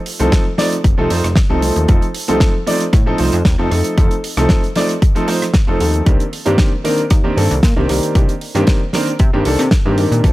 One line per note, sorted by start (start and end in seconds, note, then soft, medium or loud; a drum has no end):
0.06 open hi-hat loud
0.19 0.30 C2 medium
0.19 0.43 F3 loud
0.19 0.43 A3 medium
0.19 0.43 C4 medium
0.19 0.44 D#4 medium
0.19 0.44 A4 loud
0.19 closed hi-hat medium
0.32 kick loud
0.32 snare loud
0.32 closed hi-hat medium
0.58 0.73 F3 medium
0.58 0.74 A3 medium
0.58 0.74 C4 medium
0.58 0.74 D#4 medium
0.58 0.74 D5 loud
0.58 snare medium
0.58 open hi-hat loud
0.72 closed hi-hat medium
0.84 0.96 F1 medium
0.84 kick loud
0.84 closed hi-hat medium
0.98 1.08 C2 loud
0.98 1.08 F3 loud
0.98 1.08 A3 medium
0.98 1.08 C4 medium
0.98 1.08 D#4 medium
0.98 1.08 A4 loud
1.10 1.22 F2 medium
1.10 1.26 F3 medium
1.10 1.26 A3 medium
1.10 1.26 C4 medium
1.10 1.26 D#4 medium
1.10 1.26 C5 medium
1.10 open hi-hat loud
1.24 1.35 F1 loud
1.24 cross-stick medium
1.24 closed hi-hat medium
1.36 kick loud
1.36 snare loud
1.36 closed hi-hat medium
1.49 1.72 C2 loud
1.49 1.60 F3 medium
1.49 1.61 A3 medium
1.49 1.61 C4 medium
1.49 1.61 D#4 medium
1.49 1.61 A4 loud
1.62 1.86 F3 medium
1.62 1.86 A3 medium
1.62 1.86 C4 medium
1.62 1.86 D#4 medium
1.62 1.86 A4 medium
1.62 open hi-hat loud
1.76 1.87 D#2 medium
1.76 closed hi-hat medium
1.88 2.00 F2 loud
1.88 2.04 F3 medium
1.88 2.04 A3 medium
1.88 2.04 C4 medium
1.88 2.04 D#4 medium
1.88 2.04 A4 medium
1.88 kick loud
1.88 closed hi-hat medium
2.02 closed hi-hat medium
2.15 open hi-hat loud
2.28 2.39 C2 medium
2.28 2.52 F3 loud
2.28 2.52 A3 medium
2.28 2.52 C4 medium
2.28 2.52 D#4 loud
2.28 2.52 A4 loud
2.28 closed hi-hat medium
2.40 kick loud
2.40 snare loud
2.40 closed hi-hat medium
2.66 2.82 F3 loud
2.66 2.82 A3 medium
2.66 2.82 C4 medium
2.66 2.83 D#4 medium
2.66 2.83 D5 loud
2.66 open hi-hat loud
2.80 closed hi-hat medium
2.93 3.15 A2 medium
2.93 kick loud
2.93 cross-stick medium
2.93 closed hi-hat medium
3.06 3.16 F3 loud
3.06 3.17 A3 medium
3.06 3.17 C4 medium
3.06 3.17 D#4 medium
3.06 3.17 A4 loud
3.18 3.31 C2 loud
3.18 3.34 F3 medium
3.18 3.34 A3 medium
3.18 3.35 C4 medium
3.18 3.35 D#4 medium
3.18 3.35 C5 loud
3.18 open hi-hat loud
3.32 3.43 F2 loud
3.32 closed hi-hat medium
3.45 3.57 D#2 loud
3.45 kick loud
3.45 snare loud
3.45 closed hi-hat medium
3.58 3.69 F2 medium
3.58 3.69 F3 medium
3.58 3.69 A3 medium
3.58 3.69 C4 medium
3.58 3.70 D#4 medium
3.58 3.70 A4 loud
3.71 3.83 F2 medium
3.71 3.95 F3 medium
3.71 3.95 A3 medium
3.71 3.95 C4 medium
3.71 3.95 D#4 medium
3.71 3.95 A4 medium
3.71 cross-stick medium
3.71 open hi-hat loud
3.84 closed hi-hat medium
3.97 4.09 F2 loud
3.97 4.13 F3 medium
3.97 4.13 A3 medium
3.97 4.13 C4 medium
3.97 4.13 D#4 medium
3.97 4.13 A4 medium
3.97 kick loud
3.97 closed hi-hat medium
4.11 closed hi-hat medium
4.24 open hi-hat loud
4.37 4.47 C2 loud
4.37 4.61 F3 loud
4.37 4.61 A3 medium
4.37 4.61 C4 medium
4.37 4.61 D#4 medium
4.37 4.61 A4 loud
4.37 cross-stick medium
4.37 closed hi-hat medium
4.49 kick loud
4.49 snare loud
4.49 closed hi-hat medium
4.64 closed hi-hat soft
4.76 4.91 F3 medium
4.76 4.91 A3 medium
4.76 4.91 C4 medium
4.76 4.91 D#4 medium
4.76 4.92 D5 loud
4.76 snare medium
4.76 open hi-hat loud
4.89 closed hi-hat medium
5.02 kick loud
5.02 closed hi-hat medium
5.15 5.25 F3 loud
5.15 5.25 A3 medium
5.15 5.26 C4 medium
5.15 5.26 D#4 medium
5.15 5.26 A4 loud
5.15 closed hi-hat medium
5.27 5.43 F3 medium
5.27 5.43 A3 medium
5.27 5.43 C4 medium
5.27 5.43 D#4 medium
5.27 5.43 C5 medium
5.27 cross-stick medium
5.27 open hi-hat loud
5.42 cross-stick medium
5.42 closed hi-hat medium
5.54 kick loud
5.54 snare loud
5.54 closed hi-hat medium
5.67 5.78 F1 medium
5.67 5.78 F3 loud
5.67 5.78 A3 medium
5.67 5.78 C4 medium
5.67 5.79 D#4 medium
5.67 5.79 A4 loud
5.79 6.02 D#2 medium
5.79 6.03 F3 medium
5.79 6.03 A3 medium
5.79 6.03 C4 medium
5.79 6.03 D#4 medium
5.79 6.03 A4 medium
5.79 open hi-hat loud
5.94 closed hi-hat medium
6.06 6.18 C2 loud
6.06 6.21 D#3 medium
6.06 6.21 A#3 medium
6.06 6.22 C4 medium
6.06 6.22 D4 medium
6.06 6.22 G4 medium
6.06 kick loud
6.06 closed hi-hat medium
6.20 closed hi-hat medium
6.33 open hi-hat loud
6.45 6.57 G2 loud
6.45 6.69 D#3 medium
6.45 6.69 A#3 medium
6.45 6.70 C4 medium
6.45 6.70 D4 medium
6.45 6.70 G4 loud
6.45 closed hi-hat medium
6.58 kick loud
6.58 snare loud
6.58 closed hi-hat medium
6.84 7.00 D#3 medium
6.84 7.00 A#3 medium
6.84 7.00 C4 medium
6.84 7.00 D4 medium
6.84 7.00 A#4 loud
6.84 open hi-hat loud
6.98 closed hi-hat medium
7.10 7.32 D#2 medium
7.10 kick loud
7.10 cross-stick medium
7.10 closed hi-hat medium
7.24 7.34 D#3 loud
7.24 7.34 A#3 medium
7.24 7.34 C4 medium
7.24 7.34 D4 medium
7.24 7.34 G4 loud
7.36 7.48 G2 medium
7.36 7.52 D#3 medium
7.36 7.52 A#3 medium
7.36 7.52 C4 medium
7.36 7.52 D4 medium
7.36 7.52 A4 loud
7.36 open hi-hat loud
7.51 7.61 C2 loud
7.51 closed hi-hat medium
7.63 7.74 A#2 medium
7.63 kick loud
7.63 snare loud
7.63 closed hi-hat medium
7.76 7.87 C2 medium
7.76 7.87 D#3 medium
7.76 7.87 A#3 medium
7.76 7.87 C4 medium
7.76 7.87 D4 medium
7.76 7.88 G4 loud
7.88 8.00 C2 medium
7.88 8.12 D#3 medium
7.88 8.12 A#3 medium
7.88 8.12 C4 medium
7.88 8.12 D4 medium
7.88 8.12 G4 medium
7.88 cross-stick medium
7.88 open hi-hat loud
8.03 closed hi-hat medium
8.15 8.26 C2 loud
8.15 8.30 D#3 medium
8.15 8.31 A#3 medium
8.15 8.31 C4 medium
8.15 8.31 D4 medium
8.15 8.31 G4 medium
8.15 kick loud
8.15 closed hi-hat medium
8.29 closed hi-hat medium
8.41 open hi-hat loud
8.55 8.65 G2 medium
8.55 8.78 D#3 loud
8.55 8.78 A#3 medium
8.55 8.79 C4 medium
8.55 8.79 D4 medium
8.55 8.79 G4 loud
8.55 closed hi-hat medium
8.67 kick loud
8.67 snare loud
8.67 closed hi-hat medium
8.93 9.09 D#3 loud
8.93 9.09 A#3 medium
8.93 9.09 C4 medium
8.93 9.09 D4 medium
8.93 9.09 A#4 loud
8.93 snare medium
8.93 open hi-hat loud
9.07 closed hi-hat medium
9.19 9.31 C3 loud
9.19 kick loud
9.19 closed hi-hat medium
9.33 9.43 G2 loud
9.33 9.43 D#3 loud
9.33 9.43 A#3 medium
9.33 9.43 C4 medium
9.33 9.43 D4 medium
9.33 9.44 G4 loud
9.45 9.57 C2 loud
9.45 9.61 D#3 medium
9.45 9.61 A#3 medium
9.45 9.61 C4 medium
9.45 9.61 D4 medium
9.45 9.61 A4 loud
9.45 open hi-hat loud
9.59 9.69 C3 loud
9.59 cross-stick medium
9.59 closed hi-hat medium
9.71 kick loud
9.71 snare loud
9.71 closed hi-hat medium
9.85 10.06 G2 loud
9.85 9.96 D#3 loud
9.85 9.96 A#3 medium
9.85 9.96 C4 medium
9.85 9.96 D4 medium
9.85 9.96 G4 loud
9.98 10.21 D#3 medium
9.98 10.21 A#3 medium
9.98 10.21 C4 medium
9.98 10.21 D4 medium
9.98 10.21 G4 medium
9.98 open hi-hat loud
10.11 10.22 A#2 medium
10.11 closed hi-hat medium
10.23 10.33 D2 loud
10.23 10.33 F3 medium
10.23 10.33 A3 medium
10.23 10.33 C4 medium
10.23 10.33 D4 medium
10.23 10.33 A4 medium
10.23 kick loud
10.23 closed hi-hat medium